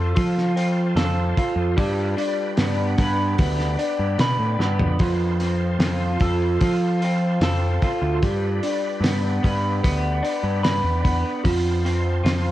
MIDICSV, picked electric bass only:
0, 0, Header, 1, 2, 480
1, 0, Start_track
1, 0, Tempo, 805369
1, 1057, Time_signature, 4, 2, 24, 8
1, 7459, End_track
2, 0, Start_track
2, 0, Title_t, "Picked electric bass"
2, 0, Program_c, 0, 34
2, 0, Note_on_c, 0, 41, 93
2, 78, Note_off_c, 0, 41, 0
2, 101, Note_on_c, 0, 53, 101
2, 555, Note_off_c, 0, 53, 0
2, 569, Note_on_c, 0, 41, 92
2, 791, Note_off_c, 0, 41, 0
2, 929, Note_on_c, 0, 41, 81
2, 1042, Note_off_c, 0, 41, 0
2, 1057, Note_on_c, 0, 43, 110
2, 1275, Note_off_c, 0, 43, 0
2, 1537, Note_on_c, 0, 43, 92
2, 1755, Note_off_c, 0, 43, 0
2, 1776, Note_on_c, 0, 43, 108
2, 1994, Note_off_c, 0, 43, 0
2, 2018, Note_on_c, 0, 38, 94
2, 2236, Note_off_c, 0, 38, 0
2, 2379, Note_on_c, 0, 43, 84
2, 2488, Note_off_c, 0, 43, 0
2, 2496, Note_on_c, 0, 47, 87
2, 2605, Note_off_c, 0, 47, 0
2, 2615, Note_on_c, 0, 45, 72
2, 2724, Note_off_c, 0, 45, 0
2, 2735, Note_on_c, 0, 43, 91
2, 2844, Note_off_c, 0, 43, 0
2, 2858, Note_on_c, 0, 41, 89
2, 2966, Note_off_c, 0, 41, 0
2, 2977, Note_on_c, 0, 41, 98
2, 3434, Note_off_c, 0, 41, 0
2, 3451, Note_on_c, 0, 41, 107
2, 3673, Note_off_c, 0, 41, 0
2, 3699, Note_on_c, 0, 41, 84
2, 3917, Note_off_c, 0, 41, 0
2, 3942, Note_on_c, 0, 53, 103
2, 4397, Note_off_c, 0, 53, 0
2, 4415, Note_on_c, 0, 41, 96
2, 4636, Note_off_c, 0, 41, 0
2, 4778, Note_on_c, 0, 38, 86
2, 4888, Note_off_c, 0, 38, 0
2, 4901, Note_on_c, 0, 43, 98
2, 5119, Note_off_c, 0, 43, 0
2, 5366, Note_on_c, 0, 43, 88
2, 5591, Note_off_c, 0, 43, 0
2, 5626, Note_on_c, 0, 43, 102
2, 5842, Note_off_c, 0, 43, 0
2, 5866, Note_on_c, 0, 38, 80
2, 6082, Note_off_c, 0, 38, 0
2, 6219, Note_on_c, 0, 43, 77
2, 6438, Note_off_c, 0, 43, 0
2, 6458, Note_on_c, 0, 40, 84
2, 6569, Note_off_c, 0, 40, 0
2, 6584, Note_on_c, 0, 40, 111
2, 6692, Note_off_c, 0, 40, 0
2, 6821, Note_on_c, 0, 41, 103
2, 7277, Note_off_c, 0, 41, 0
2, 7295, Note_on_c, 0, 41, 104
2, 7459, Note_off_c, 0, 41, 0
2, 7459, End_track
0, 0, End_of_file